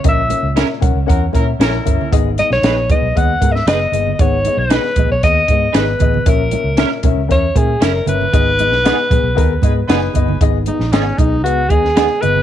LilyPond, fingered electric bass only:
\new Staff \with { instrumentName = "Fingered electric bass" } { \clef bass \time 4/4 \key gis \minor \tempo 4 = 116 ais,,8. cis,8 r16 b,,16 cis,16 e,8 ais,8 ais,,8 g,,16 r16 | gis,,8. b,,16 ais,,8. b,,16 dis,8 gis,8 fis,,8 g,,8 | gis,,8. b,,8 r16 ais,,16 b,,16 dis,8 gis,8 gis,,8 a,,8 | ais,,8. cis,8 r16 b,,16 cis,16 e,8 ais,8 fis,,8 g,,8 |
gis,,8. b,,8 r16 ais,,16 b,,16 dis,8 gis,8 fis,,8 g,,8 | gis,,8. ais,,16 gis,,8 b,,8 cis,8 dis,4 g,,8 | }